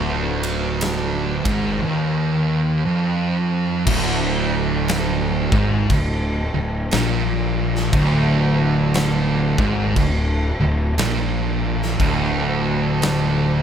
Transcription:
Already playing: fingered electric bass D1, distorted electric guitar D2
0.43 ride
0.81 snare, ride
1.45 fingered electric bass G#1, distorted electric guitar G#2, kick, ride
1.85 distorted electric guitar D#2
2.87 distorted electric guitar F2
3.87 fingered electric bass D1, distorted electric guitar D2, kick, crash
4.88 snare, crash
5.52 fingered electric bass G#1, distorted electric guitar G#2, kick
5.90 fingered electric bass D1, distorted electric guitar D2, kick, crash
6.54 fingered electric bass D1, distorted electric guitar D2
6.91 fingered electric bass A#1, distorted electric guitar A#2, snare, crash
7.76 snare
7.93 fingered electric bass D1, distorted electric guitar D2, kick, crash
8.94 snare, crash
9.58 fingered electric bass G#1, distorted electric guitar G#2, kick
9.96 fingered electric bass D1, distorted electric guitar D2, kick, crash
10.60 fingered electric bass D1, distorted electric guitar D2
10.98 fingered electric bass A#1, distorted electric guitar A#2, snare, crash
11.82 snare
11.99 fingered electric bass D1, distorted electric guitar D2, kick, crash
13.02 snare, crash

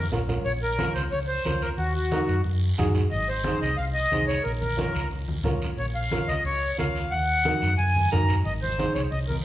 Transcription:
0.12 fingered electric bass A#1, upright piano C#4 F4 A#4, low conga, short guiro
0.28 upright piano C#4 F4 A#4, low conga, short guiro
0.45 fingered electric bass A#1, accordion C#5, high conga, long guiro
0.63 accordion A#4
0.78 upright piano C#4 F4 A#4, high conga, short guiro
0.95 fingered electric bass C#2, accordion C5, short guiro
1.12 fingered electric bass C#2, accordion C#5, high conga, long guiro
1.28 accordion C5
1.45 fingered electric bass C#2, upright piano C#4 F4 A#4, high conga, short guiro
1.62 accordion A#4, short guiro
1.78 fingered electric bass D#2, accordion F#4, high conga, long guiro
1.95 accordion F#4
2.12 upright piano D#4 F#4 A#4, high conga, short guiro
2.28 fingered electric bass F#2, short guiro
2.44 fingered electric bass F#2, high conga, long guiro
2.78 fingered electric bass F#2, upright piano D#4 F#4 G#4, high conga, low conga, short guiro
2.95 low conga, short guiro
3.11 fingered electric bass G#1, accordion D#5, high conga, long guiro
3.29 accordion C5
3.44 upright piano D#4 G#4 C5, high conga, short guiro
3.62 fingered electric bass C2, accordion D#5, short guiro
3.77 fingered electric bass C2, accordion F5, high conga, long guiro
3.94 accordion D#5
4.11 fingered electric bass C2, upright piano D#4 G#4 C5, high conga, short guiro
4.27 accordion C#5, short guiro
4.44 fingered electric bass A#1, accordion A#4, high conga, long guiro
4.61 accordion A#4, high conga
4.77 upright piano C#4 F4 A#4, high conga, short guiro
4.95 fingered electric bass C#2, short guiro
5.11 fingered electric bass C#2, high conga, long guiro
5.28 high conga
5.44 fingered electric bass C#2, upright piano C#4 F4 A#4, high conga, low conga, short guiro
5.62 short guiro
5.78 fingered electric bass A#1, accordion C#5, high conga, long guiro
5.95 accordion F5
6.11 upright piano C#4 F4 A#4, high conga, short guiro
6.28 fingered electric bass C#2, accordion D#5, short guiro
6.44 fingered electric bass C#2, accordion C#5, high conga, long guiro
6.78 fingered electric bass C#2, upright piano C#4 F4 A#4, accordion F5, high conga, short guiro
6.95 short guiro
7.11 fingered electric bass D#2, accordion F#5, high conga, long guiro
7.45 upright piano D#4 F#4 A#4, high conga, short guiro
7.62 fingered electric bass F#2, short guiro
7.78 fingered electric bass F#2, accordion G#5, high conga, long guiro
7.96 high conga
8.12 fingered electric bass F#2, upright piano D#4 F#4 A#4, accordion A#5, high conga, low conga, short guiro
8.29 low conga, short guiro
8.45 fingered electric bass G#1, accordion D#5, high conga, long guiro
8.62 accordion C5, high conga
8.78 upright piano D#4 G#4 C5, high conga, short guiro
8.94 fingered electric bass C2, accordion C#5, short guiro
9.12 fingered electric bass C2, accordion D#5, high conga, long guiro
9.28 accordion A#4, high conga

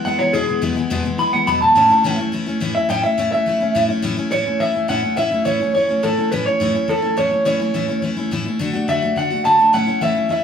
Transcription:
0.05 steel-string acoustic guitar E3 G#3 B3 E4, clean electric guitar F#5
0.19 steel-string acoustic guitar E3 G#3 B3 E4, clean electric guitar C#5
0.33 steel-string acoustic guitar E2 B2 E3 G#3 B3 E4, clean electric guitar G#4
0.47 steel-string acoustic guitar E3 G#3 B3 E4
0.61 steel-string acoustic guitar E2 B2 E3 G#3 B3 E4
0.76 steel-string acoustic guitar E3 G#3 B3 E4
0.90 steel-string acoustic guitar E2 B2 E3 G#3 B3 E4
1.04 steel-string acoustic guitar E3 G#3 B3 E4
1.18 steel-string acoustic guitar E3 G#3 B3 E4, clean electric guitar B5
1.33 steel-string acoustic guitar E3 G#3 B3 E4, clean electric guitar F#5
1.47 steel-string acoustic guitar E2 B2 E3 G#3 B3 E4, clean electric guitar B5
1.61 steel-string acoustic guitar E3 G#3 B3 E4, clean electric guitar A5
1.75 steel-string acoustic guitar A2 E3 A3 C#4 E4
1.90 steel-string acoustic guitar A3 C#4 E4
2.04 steel-string acoustic guitar A2 E3 A3 C#4 E4
2.18 steel-string acoustic guitar A3 C#4 E4
2.32 steel-string acoustic guitar E3 A3 C#4 E4
2.46 steel-string acoustic guitar A3 C#4 E4
2.60 steel-string acoustic guitar A2 E3 A3 C#4 E4
2.75 steel-string acoustic guitar A3 C#4 E4, clean electric guitar E5
2.89 steel-string acoustic guitar A2 E3 A3 C#4 E4, clean electric guitar G5
3.03 steel-string acoustic guitar A3 C#4 E4, clean electric guitar E5
3.17 steel-string acoustic guitar A2 E3 A3 C#4 E4
3.32 steel-string acoustic guitar A3 C#4 E4, clean electric guitar E5
3.46 steel-string acoustic guitar E3 A3 C#4 E4
3.60 steel-string acoustic guitar A3 C#4 E4
3.75 steel-string acoustic guitar A2 E3 A3 C#4 E4
3.88 steel-string acoustic guitar A3 C#4 E4
4.02 steel-string acoustic guitar A2 E3 A3 C#4 E4
4.17 steel-string acoustic guitar A3 C#4 E4
4.31 steel-string acoustic guitar A2 E3 A3 C#4 E4, clean electric guitar C#5
4.45 steel-string acoustic guitar A3 C#4 E4
4.60 steel-string acoustic guitar E3 A3 C#4 E4, clean electric guitar E5
4.74 steel-string acoustic guitar A3 C#4 E4
4.88 steel-string acoustic guitar A2 E3 A3 C#4 E4, clean electric guitar F#5
5.02 steel-string acoustic guitar A3 C#4 E4
5.17 steel-string acoustic guitar A2 E3 A3 C#4 E4, clean electric guitar E5
5.31 steel-string acoustic guitar A3 C#4 E4
5.45 steel-string acoustic guitar A2 E3 A3 C#4 E4, clean electric guitar C#5
5.60 steel-string acoustic guitar A3 C#4 E4
5.74 steel-string acoustic guitar E3 A3 C#4 E4, clean electric guitar C#5
5.89 steel-string acoustic guitar A3 C#4 E4
6.03 steel-string acoustic guitar A2 E3 A3 C#4 E4, clean electric guitar A4
6.17 steel-string acoustic guitar A3 C#4 E4
6.32 steel-string acoustic guitar A2 E3 A3 C#4 E4, clean electric guitar B4
6.46 steel-string acoustic guitar A3 C#4 E4, clean electric guitar C#5
6.60 steel-string acoustic guitar A2 E3 A3 C#4 E4
6.74 steel-string acoustic guitar A3 C#4 E4
6.88 steel-string acoustic guitar E3 A3 C#4 E4, clean electric guitar A4
7.02 steel-string acoustic guitar A3 C#4 E4
7.17 steel-string acoustic guitar A2 E3 A3 C#4 E4, clean electric guitar C#5
7.31 steel-string acoustic guitar A3 C#4 E4
7.45 steel-string acoustic guitar A2 E3 A3 C#4 E4, clean electric guitar C#5
7.59 steel-string acoustic guitar A3 C#4 E4
7.74 steel-string acoustic guitar A2 E3 A3 C#4 E4
7.88 steel-string acoustic guitar A3 C#4 E4
8.02 steel-string acoustic guitar E3 A3 C#4 E4
8.17 steel-string acoustic guitar A3 C#4 E4
8.31 steel-string acoustic guitar A2 E3 A3 C#4 E4
8.45 steel-string acoustic guitar A3 C#4 E4
8.59 steel-string acoustic guitar D3 A3 D4 F#4
8.73 steel-string acoustic guitar A3 D4 F#4
8.88 steel-string acoustic guitar D3 A3 D4 F#4, clean electric guitar E5
9.02 steel-string acoustic guitar A3 D4 F#4
9.16 steel-string acoustic guitar D3 A3 D4 F#4, clean electric guitar F#5
9.30 steel-string acoustic guitar A3 D4 F#4
9.45 steel-string acoustic guitar D3 A3 D4 F#4, clean electric guitar A5
9.59 steel-string acoustic guitar A3 D4 F#4
9.73 steel-string acoustic guitar A2 E3 A3 C#4 E4, clean electric guitar F#5
9.87 steel-string acoustic guitar A3 C#4 E4
10.01 steel-string acoustic guitar A2 E3 A3 C#4 E4, clean electric guitar E5
10.15 steel-string acoustic guitar A3 C#4 E4
10.29 steel-string acoustic guitar E3 A3 C#4 E4, clean electric guitar E5

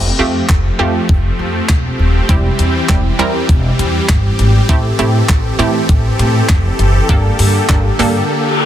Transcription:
Already playing: supersaw synth F3 A3 C4 G4
0.19 upright bass F2, synth pluck A3 C4 F4 G4
0.49 upright bass F1, kick, snare, clap
0.79 upright bass F2, synth pluck A3 C4 F4 G4
1.09 upright bass F1, kick
1.39 upright bass F2
1.69 upright bass E1, kick, snare, clap
1.99 upright bass D#1
2.29 upright bass E1, supersaw synth E3 G3, synth pluck G3 C4 E4 G4, kick, closed hi-hat
2.59 upright bass E2, closed hi-hat
2.89 upright bass E1, synth pluck G3 C4 E4 G4, kick, snare, clap, closed hi-hat
3.19 upright bass E2, synth pluck G3 C4 E4 A#4, closed hi-hat
3.49 upright bass E1, kick, closed hi-hat
3.79 upright bass E2, closed hi-hat
4.09 upright bass G1, kick, snare, clap, closed hi-hat
4.39 upright bass G#1, closed hi-hat
4.69 upright bass A1, supersaw synth E3 C4 A4, synth pluck A3 C4 E4 G4, kick, closed hi-hat
4.99 upright bass A2, synth pluck A3 C4 E4 G4, closed hi-hat
5.29 upright bass A1, kick, snare, clap, closed hi-hat
5.59 upright bass A2, synth pluck A3 C4 E4 G4, closed hi-hat
5.89 upright bass A1, kick, closed hi-hat
6.19 upright bass A2, closed hi-hat
6.49 upright bass F1, kick, snare, clap, closed hi-hat
6.79 upright bass F#1, closed hi-hat
7.09 upright bass G1, synth pluck A#3 D4 G4 A4, kick, closed hi-hat
7.39 upright bass G2, open hi-hat
7.69 upright bass G1, synth pluck A#3 D4 G4 A4, kick, snare, clap, closed hi-hat
7.99 upright bass G2, synth pluck A#3 D4 G4 A4, open hi-hat
8.29 reverse cymbal

